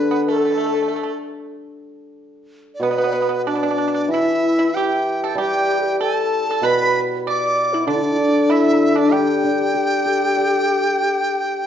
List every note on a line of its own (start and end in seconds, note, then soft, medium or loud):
0.00 0.88 D3 medium
0.00 0.21 B4 medium
0.00 0.22 B4 medium
0.11 0.26 B3 medium
0.25 0.35 A3 medium
0.25 1.16 A4 medium
0.25 1.18 A4 medium
0.36 0.42 A3 soft
0.45 0.51 A3 soft
0.52 0.56 A3 soft
0.58 0.64 A3 soft
0.66 0.72 A3 soft
0.74 0.80 A3 soft
0.82 0.87 A3 soft
0.88 0.94 A3 soft
0.96 1.02 A3 soft
1.03 1.09 A3 soft
2.75 2.84 D5 medium
2.80 4.10 B2 medium
2.80 2.90 B3 medium
2.80 2.92 B4 medium
2.80 3.45 B4 medium
2.90 2.97 B3 soft
2.90 2.99 D5 medium
2.98 3.03 B3 soft
2.98 3.08 B4 medium
3.04 3.12 B3 soft
3.04 3.17 D5 medium
3.13 3.20 B3 medium
3.13 3.49 B4 medium
3.22 3.28 B3 soft
3.29 3.36 B3 soft
3.46 3.54 D4 medium
3.46 4.12 D4 medium
3.46 4.13 D5 medium
3.55 3.62 D4 soft
3.63 3.69 D4 medium
3.71 3.77 D4 soft
3.78 3.85 D4 medium
3.88 3.93 D4 soft
3.94 4.01 D4 soft
4.09 5.99 E3 medium
4.09 4.74 E4 medium
4.09 4.76 E5 medium
4.14 4.57 E4 medium
4.59 4.74 E4 medium
4.75 5.34 G4 medium
4.75 5.20 G4 medium
4.75 5.38 G5 medium
5.24 5.37 A4 medium
5.35 7.25 G3 medium
5.35 5.97 G4 medium
5.35 5.78 G4 medium
5.35 5.97 G5 medium
5.81 6.02 G4 medium
5.81 5.86 A4 soft
6.00 6.44 A4 medium
6.00 6.47 A4 medium
6.00 6.67 A5 medium
6.48 6.65 A4 medium
6.48 6.63 A4 medium
6.62 7.87 B2 medium
6.62 6.97 B4 medium
6.62 6.99 B4 medium
6.66 7.00 B5 loud
7.27 7.75 D5 medium
7.27 7.70 D5 medium
7.27 7.85 D6 medium
7.73 7.86 E4 medium
7.73 7.88 E4 medium
7.86 9.72 D3 medium
7.86 7.97 D4 medium
7.86 8.45 D4 medium
7.86 8.53 D5 medium
7.96 8.04 E4 medium
8.02 8.13 D4 medium
8.11 8.20 E4 medium
8.18 8.51 D4 medium
8.50 8.99 E4 medium
8.50 8.78 E4 medium
8.50 8.99 E5 medium
8.78 8.92 D4 medium
8.96 9.10 D4 medium
8.96 9.13 D4 medium
8.96 9.15 D5 medium
9.09 10.97 G3 soft
9.09 11.67 G4 medium
9.13 11.67 G5 loud
9.44 10.68 D4 soft
9.74 10.99 G4 soft
10.06 11.31 A4 soft
10.37 11.62 D5 soft